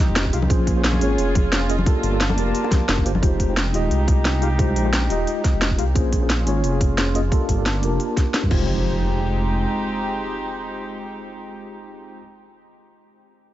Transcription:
Already playing: G#3 C4 D#4 F4 G4 D#5, downlifter
0.08 F1
0.16 snare, closed hi-hat
0.25 kick
0.32 C2 G#3 D#4 F4 G4 F5, closed hi-hat
0.42 high conga
0.49 A#1 A#3 C#4 F4 G#4 C5, kick, closed hi-hat
0.67 kick, closed hi-hat
0.76 A#3 C#4 F4 G#4 C5
0.84 snare, closed hi-hat
0.93 high conga
1.00 G#1 A#3 C#4 F4 G#4 C#5, closed hi-hat
1.18 F1, closed hi-hat
1.35 kick, closed hi-hat, high conga
1.52 snare, closed hi-hat
1.69 A#3 C#4 F4 G#4 D#5, closed hi-hat
1.79 high conga
1.85 A#3 D4 F4 G4 A4 A5, kick, closed hi-hat
2.03 G1, closed hi-hat
2.12 A#3 D4 F4 G4 A4
2.21 snare, closed hi-hat
2.29 high bongo, high conga
2.36 F1 A#3 D4 F4 G4 A#4, closed hi-hat
2.47 high bongo
2.55 closed hi-hat
2.64 high bongo
2.71 kick, snare, closed hi-hat, high conga
2.89 F1, snare, closed hi-hat
2.98 kick
3.05 G1 A#3 D4 F4 G4 C5, closed hi-hat
3.15 high conga
3.22 F1 G#3 D#4 F4 G4 C5, kick, closed hi-hat
3.40 kick, closed hi-hat
3.48 G#3 D#4 F4 G4 C5
3.57 snare, closed hi-hat
3.72 D#1 G#3 D#4 F4 G4 D#5, closed hi-hat
3.91 C2, closed hi-hat
4.08 kick, closed hi-hat
4.25 snare, closed hi-hat
4.41 G#3 D#4 F4 G4 F5, closed hi-hat
4.58 G#3 D#4 F4 G4 C5, kick, closed hi-hat
4.76 A#1, closed hi-hat
4.84 G#3 D#4 F4 G4 C5
4.93 snare, closed hi-hat
5.08 D#1 G#3 D#4 F4 G4 D#5, closed hi-hat
5.27 closed hi-hat
5.44 kick, snare, closed hi-hat
5.53 F1
5.62 snare, closed hi-hat
5.70 kick
5.78 C2 G#3 D#4 F4 G4 F5, closed hi-hat
5.94 A#1 A#3 C#4 F4 G#4 C5, kick, closed hi-hat
6.12 kick, closed hi-hat
6.21 A#3 C#4 F4 G#4 C5
6.30 snare, closed hi-hat
6.45 G#1 A#3 C#4 F4 G#4 C#5, closed hi-hat
6.64 F1, closed hi-hat
6.81 kick, closed hi-hat
6.98 snare, closed hi-hat
7.14 A#3 C#4 F4 G#4 D#5, closed hi-hat
7.31 A#3 D4 F4 G4 A4 A5, kick, closed hi-hat
7.49 G1, kick, closed hi-hat
7.57 A#3 D4 F4 G4 A4
7.66 snare, closed hi-hat
7.81 F1 A#3 D4 F4 G4 A#4, closed hi-hat
8.00 closed hi-hat
8.17 kick, snare, closed hi-hat
8.34 snare, closed hi-hat
8.43 G2, kick
8.48 F1 G#3 C4 D#4 F4 G4, kick, crash, impact
8.53 G4 C5

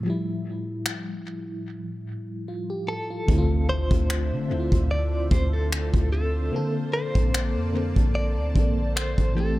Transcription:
0.00 A2 F3
0.07 G3 E4
0.86 finger snap
2.48 F4
2.70 G4
2.88 A4
3.10 F4
3.27 D2 D3 A3 C4 D4 F4 C5 E5, kick, impact
3.31 E4
3.38 F4
3.69 C5
3.91 D2, kick
4.10 finger snap
4.32 D3
4.48 D2 D3 A3 C4
4.53 E4
4.60 F4
4.72 D2, kick
4.91 D5
5.31 D2 C5, kick
5.53 A4
5.72 finger snap
5.94 D2, kick
6.12 A4
6.51 C#3 A#3 C4 D5 A5
6.56 D3 A4
6.93 C5
7.15 A#1, kick
7.34 finger snap
7.56 F2
7.73 D3 A#3 C4
7.78 A4
7.96 A#1, kick
8.15 D5
8.37 D2
8.54 A#1 D3 A#3 C4, kick
8.59 A4
8.96 C5, finger snap
9.18 A1, kick
9.35 E3 A3 C4 G4 A4
9.40 G4

